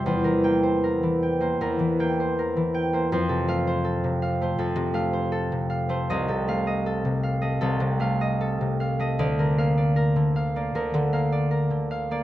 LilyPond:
<<
  \new Staff \with { instrumentName = "Harp" } { \time 4/4 \key f \major \tempo 4 = 78 << { r8 g''2.~ g''8 | r8 f''2.~ f''8~ | \key bes \major f''8 f''2.~ f''8~ | f''8 f''2.~ f''8 | } \\ { <g' c'' e''>16 bes'8 c''16 bes'16 e16 g''16 c''16 bes'16 e16 g''16 c''16 bes'16 e16 g''16 c''16 | c''16 a'8 c''16 a'16 c16 f''16 c''16 a'16 c16 f''16 c''16 a'16 c16 f''16 c''16 | ees''16 a'8 ees''16 a'16 c16 f''16 ees''16 a'16 c16 f''16 ees''16 a'16 c16 f''16 ees''16 | d''16 bes'8 d''16 bes'16 d16 f''16 d''16 bes'16 d16 f''16 d''16 bes'16 d16 f''16 d''16 | } >> }
  \new Staff \with { instrumentName = "Harp" } { \clef bass \time 4/4 \key f \major <e, g>16 e16 bes4~ bes16 bes16 e,16 e16 bes4~ bes16 bes16 | f,16 c16 a4~ a16 a16 f,16 c16 a4~ a16 a16 | \key bes \major c,16 c16 a4~ a16 a16 c,16 c16 a4~ a16 a16 | d,16 d16 bes4~ bes16 bes16 d,16 d16 bes4~ bes16 bes16 | }
>>